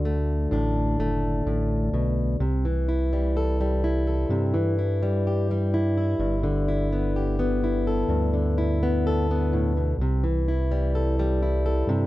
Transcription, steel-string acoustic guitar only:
0.00 2.41 D2 medium
0.00 2.40 D3 medium
0.00 2.35 F#4 medium
0.05 0.99 A3 medium
0.51 1.46 A2 medium
0.51 2.35 D4 medium
1.00 2.35 A3 medium
1.47 1.93 A2 medium
1.94 2.40 B2 medium
2.40 2.64 C3 medium
2.65 4.53 E3 medium
2.89 3.84 E4 medium
3.13 3.60 G3 soft
3.37 4.06 A4 medium
3.61 5.02 G3 medium
3.84 4.78 E4 medium
4.07 5.25 A4 soft
4.30 4.54 C3 medium
4.54 6.43 E3 medium
4.79 5.74 E4 medium
5.03 5.50 G3 medium
5.27 5.97 G4 medium
5.51 6.92 G3 medium
5.74 5.97 E4 medium
5.97 6.68 E4 medium
6.20 8.08 G2 medium
6.43 8.32 D3 medium
6.68 7.63 E4 medium
6.92 7.38 B3 medium
7.16 7.87 G4 medium
7.39 8.80 B3 medium
7.64 8.57 E4 medium
7.87 9.04 A4 medium
8.09 9.93 G2 medium
8.33 9.99 D3 medium
8.58 9.93 E4 medium
8.83 9.29 B3 medium
9.07 9.94 A4 medium
9.31 9.94 B3 medium
9.53 9.76 A2 medium
9.77 9.99 B2 medium
10.01 10.23 C3 medium
10.24 12.07 E3 medium
10.48 11.41 E4 medium
10.71 11.18 G3 medium
10.95 11.65 A4 medium
11.19 12.07 G3 medium
11.42 12.07 E4 medium
11.66 12.07 A4 medium
11.89 12.07 C3 medium

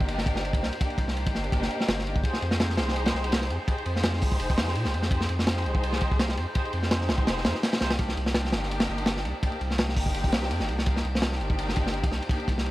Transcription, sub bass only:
0.00 0.25 G1 loud
0.26 0.64 G1 medium
0.62 0.71 C2 medium
0.98 1.36 C2 loud
1.34 1.51 G1 loud
1.52 1.69 G1 loud
1.88 2.23 G1 medium
2.42 2.79 F2 loud
2.78 3.13 C2 loud
3.14 3.51 C2 medium
3.50 3.59 F2 medium
3.86 4.24 F2 loud
4.22 4.38 C2 loud
4.40 4.59 F1 loud
4.58 4.77 F2 medium
4.76 4.87 A#2 loud
4.85 4.95 C2 loud
4.94 5.28 F2 loud
5.29 5.67 F2 loud
5.65 6.00 C2 loud
6.02 6.39 C2 medium
6.38 6.46 F2 medium
6.73 7.11 F2 loud
7.09 7.26 C2 loud
7.27 7.47 F1 loud
7.45 7.54 F2 medium
7.81 8.16 C2 medium
8.17 8.54 C2 loud
8.53 8.88 G1 loud
8.89 9.26 G1 medium
9.25 9.34 C2 medium
9.61 9.98 C2 loud
9.97 10.13 G1 loud
10.15 10.34 G1 loud
10.33 10.52 C2 medium
10.51 10.62 F2 loud
10.60 10.70 G1 loud
10.69 11.03 C2 loud
11.05 11.42 C2 loud
11.40 11.75 G1 loud
11.77 12.14 G1 medium
12.12 12.21 C2 medium
12.48 12.71 C2 loud

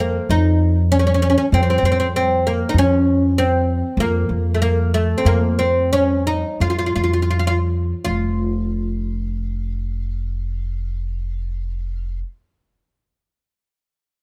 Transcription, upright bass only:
0.00 0.17 F2 medium
0.29 1.35 F2 medium
1.52 1.79 F2 loud
1.83 2.62 F2 medium
2.74 3.81 F2 medium
3.97 4.25 F2 loud
4.29 5.12 F2 medium
5.25 6.42 F2 medium
6.60 6.91 F2 medium
6.96 7.92 F2 medium
8.06 12.21 F1 medium

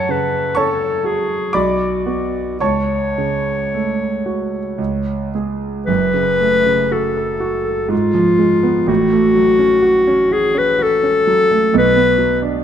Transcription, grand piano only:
0.00 1.50 F#2 soft
0.00 0.53 A4 medium
0.00 0.53 F#5 medium
0.00 0.55 A5 medium
0.09 0.85 C#3 soft
0.55 1.34 C#4 soft
0.55 1.50 C#5 medium
0.55 1.50 A5 medium
0.55 1.53 C#6 medium
1.04 1.54 F#4 soft
1.53 2.57 B1 soft
1.53 2.56 D5 medium
1.53 2.56 B5 medium
1.53 2.59 D6 medium
2.06 2.56 B3 soft
2.06 2.56 F#4 soft
2.60 4.76 C#2 soft
2.60 5.30 C#5 medium
2.60 5.30 A5 medium
2.60 5.34 C#6 medium
3.18 4.05 C#3 soft
3.74 4.58 A3 soft
4.26 4.79 F#4 soft
4.78 5.85 C#2 soft
5.35 5.85 G#3 soft
5.35 5.85 G#4 soft
5.87 7.87 F#1 medium
5.87 7.88 F#2 soft
6.14 6.56 C#3 soft
6.40 6.82 A3 soft
6.66 7.07 C#3 soft
6.91 7.32 F#4 soft
7.17 7.57 A4 soft
7.40 7.81 F#4 soft
7.65 7.90 A4 soft
7.89 8.85 G#2 medium
8.14 8.54 F3 soft
8.38 8.78 G#3 soft
8.63 8.88 B3 medium
8.87 11.69 A1 medium
8.87 11.70 A2 medium
9.13 9.51 A3 soft
9.35 9.74 F#3 soft
9.59 9.98 C#4 soft
9.82 10.22 F#4 medium
10.07 10.47 C#4 medium
10.31 10.71 F#4 soft
10.54 10.94 C#4 soft
10.79 11.18 F#4 soft
11.03 11.41 C#4 medium
11.27 11.65 F#3 soft
11.51 11.74 A3 soft
11.74 12.64 B1 medium
11.74 12.64 B2 medium
11.96 12.33 B3 medium
12.18 12.56 F#3 soft
12.42 12.64 D4 soft

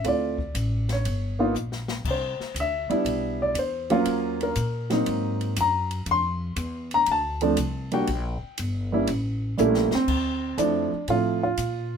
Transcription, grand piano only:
0.04 0.36 A3 medium
0.04 0.36 C4 medium
0.04 0.36 E4 soft
0.04 0.36 F4 medium
0.04 0.87 D5 medium
0.92 1.53 C#5 medium
1.39 1.53 A#3 medium
1.39 1.53 B3 medium
1.39 1.54 D#4 medium
1.39 1.54 F4 medium
2.10 2.55 C5 medium
2.60 3.39 E5 loud
2.90 3.52 G3 medium
2.90 3.53 B3 medium
2.90 3.53 D4 medium
2.90 3.53 E4 medium
3.42 3.56 D5 loud
3.59 4.38 C5 medium
3.90 4.53 F#3 medium
3.90 4.53 A#3 medium
3.90 4.53 C#4 medium
3.90 4.54 F4 loud
4.43 5.04 A#4 medium
4.90 5.53 F#3 medium
4.90 5.53 A#3 medium
4.90 5.54 C4 medium
4.90 5.54 D#4 medium
5.61 6.05 A#5 loud
6.11 6.90 C6 loud
6.94 7.08 A#5 loud
7.11 7.90 A5 loud
7.42 7.56 F3 medium
7.42 7.56 A3 medium
7.42 7.56 C4 medium
7.42 7.56 D4 medium
7.92 8.06 G3 medium
7.92 8.06 A#3 medium
7.92 8.06 D4 medium
7.92 8.07 F#4 medium
7.92 8.55 G5 medium
8.92 9.06 G3 medium
8.92 9.07 A#3 medium
8.92 9.07 C#4 medium
8.92 9.07 E4 medium
9.57 9.89 G3 medium
9.57 9.91 A3 medium
9.57 9.89 A#3 medium
9.57 9.90 C#4 medium
9.57 9.90 E4 medium
9.95 10.56 C4 loud
10.58 10.89 F3 medium
10.58 10.89 A3 medium
10.58 10.90 C4 medium
10.58 11.05 D4 medium
10.58 10.90 E4 medium
11.09 11.40 F3 medium
11.09 11.40 A3 medium
11.09 11.40 C4 medium
11.09 11.40 E4 medium
11.09 11.42 F4 loud
11.43 11.97 F4 medium

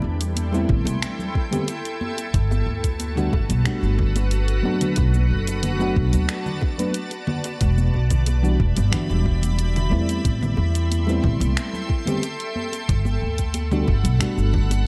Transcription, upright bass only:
0.04 0.64 E2 medium
0.69 0.83 A1 medium
0.87 0.99 C2 medium
2.34 2.61 G1 medium
2.66 3.27 D2 medium
3.33 3.47 G1 medium
3.50 3.62 B1 medium
3.83 4.59 G1 medium
4.98 5.24 B1 medium
5.30 5.91 F#1 medium
5.97 6.10 B1 medium
6.14 6.26 D2 medium
7.61 7.88 E1 medium
7.94 8.55 B1 medium
8.60 8.74 E1 medium
8.77 8.90 G1 medium
9.10 9.93 E1 medium
9.92 10.18 E2 medium
10.25 10.52 A1 medium
10.58 11.19 E2 medium
11.24 11.38 A1 medium
11.41 11.53 C2 medium
12.89 13.15 G1 medium
13.22 13.83 D2 medium
13.88 14.02 G1 medium
14.05 14.17 B1 medium
14.38 14.87 G1 medium

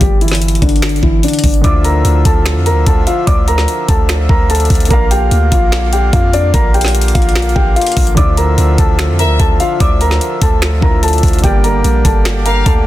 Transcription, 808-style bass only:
0.01 0.60 G1 loud
0.62 1.01 G1 loud
1.03 1.22 G1 loud
1.44 1.63 G1 loud
1.64 2.03 D2 loud
2.05 2.24 D2 loud
2.25 2.57 D2 loud
2.56 2.73 F2 loud
2.71 2.86 D2 loud
2.87 3.06 D2 loud
3.27 3.66 D2 loud
3.89 4.28 D2 loud
4.29 4.68 D2 loud
4.70 4.90 D2 loud
4.91 5.30 A#1 loud
5.31 5.51 D2 loud
5.52 6.11 A#1 loud
6.13 6.52 F2 loud
6.54 7.13 A#1 loud
7.15 7.54 A#1 loud
7.56 7.75 A#1 loud
7.97 8.16 A#1 loud
8.17 8.56 D2 loud
8.58 8.78 D2 loud
8.78 9.10 D2 loud
9.09 9.26 F2 loud
9.24 9.39 D2 loud
9.40 9.59 D2 loud
9.80 10.20 D2 loud
10.42 10.81 D2 loud
10.82 11.22 D2 loud
11.23 11.43 D2 loud
11.44 11.83 G1 loud
11.84 12.04 A#1 loud
12.05 12.64 G1 loud
12.66 12.87 D2 loud

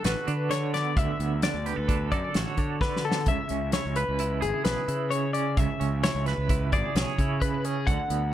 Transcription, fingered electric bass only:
0.05 0.14 A1 medium
0.28 0.98 D3 medium
0.96 1.06 D2 medium
1.19 1.47 D2 medium
1.54 1.72 D2 medium
1.78 2.12 D2 medium
2.12 2.21 F#2 medium
2.35 2.44 A1 medium
2.58 3.28 D3 medium
3.27 3.36 C#2 medium
3.50 3.78 C#2 medium
3.85 4.04 C#2 medium
4.09 4.43 C#2 medium
4.42 4.51 G#1 medium
4.65 4.75 B1 medium
4.88 5.59 C#3 medium
5.57 5.67 C#2 medium
5.81 6.08 C#2 medium
6.15 6.33 C#2 medium
6.38 6.74 C#2 medium
6.72 6.82 G#1 medium
6.95 7.04 B1 medium
7.18 7.89 C#3 loud
7.87 7.96 D2 medium
8.10 8.34 D2 medium

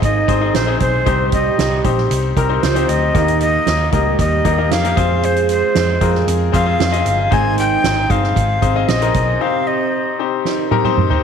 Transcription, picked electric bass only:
0.02 0.24 G#1 medium
0.28 0.50 G#1 medium
0.55 0.76 A#1 medium
0.81 1.02 B1 medium
1.07 1.49 C2 medium
1.59 1.80 C2 medium
1.85 2.06 A#1 medium
2.11 2.32 C2 medium
2.37 2.58 C2 medium
2.63 2.84 C#2 medium
2.89 3.10 D2 medium
3.15 3.58 D#2 medium
3.67 3.88 D#2 medium
3.93 4.14 C#2 medium
4.19 4.40 D#2 medium
4.45 4.72 D#2 medium
4.72 4.93 F2 medium
4.97 5.61 F2 medium
5.76 5.97 F2 medium
6.01 6.23 F2 medium
6.28 6.49 F2 medium
6.54 6.75 F2 medium
6.80 7.01 F2 medium
7.06 7.27 G1 medium
7.32 7.75 G#1 medium
7.84 8.06 G#1 medium
8.10 8.32 G1 medium
8.36 8.58 G#1 medium
8.62 8.84 G#1 medium
8.89 9.10 A#1 medium
9.15 9.36 B1 medium

